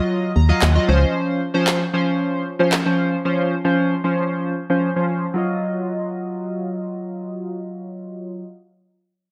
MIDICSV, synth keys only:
0, 0, Header, 1, 2, 480
1, 0, Start_track
1, 0, Tempo, 526316
1, 1045, Time_signature, 4, 2, 24, 8
1, 8493, End_track
2, 0, Start_track
2, 0, Title_t, "Synth keys"
2, 0, Program_c, 0, 88
2, 0, Note_on_c, 0, 54, 82
2, 0, Note_on_c, 0, 65, 77
2, 0, Note_on_c, 0, 75, 90
2, 296, Note_off_c, 0, 54, 0
2, 297, Note_off_c, 0, 65, 0
2, 298, Note_off_c, 0, 75, 0
2, 326, Note_on_c, 0, 82, 67
2, 444, Note_on_c, 0, 54, 84
2, 447, Note_on_c, 0, 65, 81
2, 449, Note_on_c, 0, 75, 95
2, 549, Note_off_c, 0, 82, 0
2, 566, Note_on_c, 0, 78, 73
2, 625, Note_off_c, 0, 54, 0
2, 626, Note_off_c, 0, 65, 0
2, 628, Note_off_c, 0, 75, 0
2, 684, Note_on_c, 0, 54, 85
2, 687, Note_on_c, 0, 65, 76
2, 689, Note_on_c, 0, 75, 90
2, 789, Note_off_c, 0, 78, 0
2, 796, Note_off_c, 0, 75, 0
2, 804, Note_on_c, 0, 53, 87
2, 805, Note_off_c, 0, 54, 0
2, 806, Note_off_c, 0, 65, 0
2, 807, Note_on_c, 0, 61, 83
2, 807, Note_on_c, 0, 75, 71
2, 808, Note_on_c, 0, 72, 97
2, 1029, Note_off_c, 0, 75, 0
2, 1285, Note_off_c, 0, 53, 0
2, 1286, Note_off_c, 0, 61, 0
2, 1287, Note_off_c, 0, 72, 0
2, 1404, Note_on_c, 0, 53, 90
2, 1406, Note_on_c, 0, 61, 80
2, 1408, Note_on_c, 0, 72, 99
2, 1675, Note_off_c, 0, 53, 0
2, 1676, Note_off_c, 0, 61, 0
2, 1677, Note_off_c, 0, 72, 0
2, 1764, Note_on_c, 0, 53, 84
2, 1766, Note_on_c, 0, 61, 79
2, 1769, Note_on_c, 0, 72, 88
2, 2215, Note_off_c, 0, 53, 0
2, 2217, Note_off_c, 0, 61, 0
2, 2218, Note_off_c, 0, 72, 0
2, 2364, Note_on_c, 0, 53, 87
2, 2367, Note_on_c, 0, 61, 80
2, 2368, Note_on_c, 0, 72, 93
2, 2545, Note_off_c, 0, 53, 0
2, 2546, Note_off_c, 0, 61, 0
2, 2547, Note_off_c, 0, 72, 0
2, 2604, Note_on_c, 0, 53, 87
2, 2606, Note_on_c, 0, 61, 75
2, 2608, Note_on_c, 0, 72, 92
2, 2875, Note_off_c, 0, 53, 0
2, 2876, Note_off_c, 0, 61, 0
2, 2877, Note_off_c, 0, 72, 0
2, 2964, Note_on_c, 0, 53, 87
2, 2966, Note_on_c, 0, 61, 76
2, 2968, Note_on_c, 0, 72, 98
2, 3235, Note_off_c, 0, 53, 0
2, 3236, Note_off_c, 0, 61, 0
2, 3237, Note_off_c, 0, 72, 0
2, 3324, Note_on_c, 0, 53, 86
2, 3326, Note_on_c, 0, 61, 78
2, 3328, Note_on_c, 0, 72, 100
2, 3595, Note_off_c, 0, 53, 0
2, 3596, Note_off_c, 0, 61, 0
2, 3597, Note_off_c, 0, 72, 0
2, 3683, Note_on_c, 0, 53, 84
2, 3686, Note_on_c, 0, 61, 75
2, 3688, Note_on_c, 0, 72, 91
2, 4135, Note_off_c, 0, 53, 0
2, 4136, Note_off_c, 0, 61, 0
2, 4138, Note_off_c, 0, 72, 0
2, 4283, Note_on_c, 0, 53, 81
2, 4285, Note_on_c, 0, 61, 77
2, 4287, Note_on_c, 0, 72, 95
2, 4464, Note_off_c, 0, 53, 0
2, 4466, Note_off_c, 0, 61, 0
2, 4467, Note_off_c, 0, 72, 0
2, 4524, Note_on_c, 0, 53, 79
2, 4526, Note_on_c, 0, 61, 71
2, 4528, Note_on_c, 0, 72, 86
2, 4795, Note_off_c, 0, 53, 0
2, 4796, Note_off_c, 0, 61, 0
2, 4797, Note_off_c, 0, 72, 0
2, 4868, Note_on_c, 0, 54, 78
2, 4886, Note_on_c, 0, 65, 72
2, 4904, Note_on_c, 0, 75, 82
2, 7686, Note_off_c, 0, 54, 0
2, 7704, Note_off_c, 0, 65, 0
2, 7722, Note_off_c, 0, 75, 0
2, 8493, End_track
0, 0, End_of_file